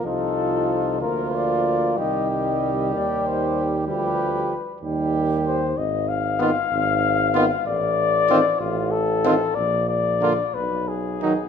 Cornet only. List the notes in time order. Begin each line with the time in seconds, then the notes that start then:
0.04 A4
1.02 A#4
1.35 D5
1.99 D#5
2.31 D#5
2.95 D5
3.27 C5
3.89 B4
5.46 C5
5.77 D#5
6.08 F5
7.66 D5
8.60 F4
8.91 A4
9.55 D5
9.89 D5
10.54 B4
10.88 G#4